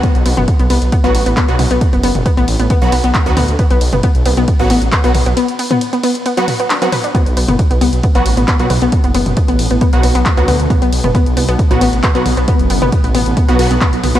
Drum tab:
RD |x-x-x-x-x-x-x-x-|x-x-x-x-x-x-x-x-|x-x-x-x-x-x-x-x-|x-x-x-x-x-x-x-x-|
HH |xxoxxxoxxxoxxxox|xxoxxxoxxxoxxxox|xxoxxxoxxxoxxxox|xxoxxxoxxxoxxxox|
CP |------------x---|------------x---|------------x---|------------x---|
T2 |---o----------o-|---o----------o-|---o----------o-|---o------o---o-|
BD |o---o---o---o---|o---o---o---o---|o---o---o---o---|----------------|

RD |x-x-x-x-x-x-x-x-|x-x-x-x-x-x-x-x-|x-x-x-x-x-x-x-x-|x-x-x-x-x-x-x-x-|
HH |xxoxxxoxxxoxxxox|xxoxxxoxxxoxxxox|xxoxxxoxxxoxxxox|xxoxxxoxxxoxxxox|
CP |------------x---|------------x---|------------x---|------------x---|
T2 |---o----------o-|---o----------o-|---o----------o-|---o----------o-|
BD |o---o---o---o---|o---o---o---o---|o---o---o---o---|o---o---o---o---|